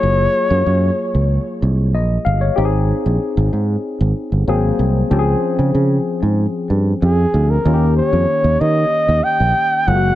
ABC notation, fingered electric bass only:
X:1
M:4/4
L:1/16
Q:1/4=94
K:Ebmix
V:1 name="Fingered electric bass" clef=bass
_G,,,2 z _G,, G,,2 z D,,2 z C,,2 B,,,2 =G,,,2 | A,,,3 B,,, z A,,, A,,2 z A,,, z G,,, A,,,2 C,,2 | D,,2 z D, D,2 z A,,2 z G,,2 F,,2 =D,,2 | E,,3 F,, z E,, E,2 z E,, z B,,, z2 _G,,,2 |]